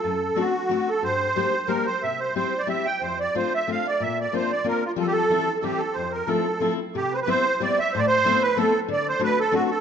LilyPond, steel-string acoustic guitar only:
\new Staff \with { instrumentName = "Steel-string acoustic guitar" } { \time 3/4 \key f \major \tempo 4 = 183 fis,4 <a c' d' fis'>8 r8 <a c' d' fis'>8 r8 | g,4 <g bes d' g'>8 r8 <g bes d' g'>8 r8 | c4 <g c' e' g'>8 r8 <g c' e' g'>8 r8 | f,4 <a c' d' f'>8 r8 <a c' d' f'>8 r8 |
bes,4 <bes c' d' f'>8 r8 <bes c' d' f'>8 r8 | <f g c' f'>4 <e g c' e'>8 r8 <e g c' e'>8 r8 | f,4 <f a c' e'>8 r8 <f a c' e'>8 r8 | \key c \major c4 <g b c' e'>8 r8 <g b c' e'>8 r8 |
a,4 <a b c' e'>8 r8 <a b c' e'>8 r8 | d4 <a c' d' fis'>8 r8 <a c' d' fis'>8 r8 | }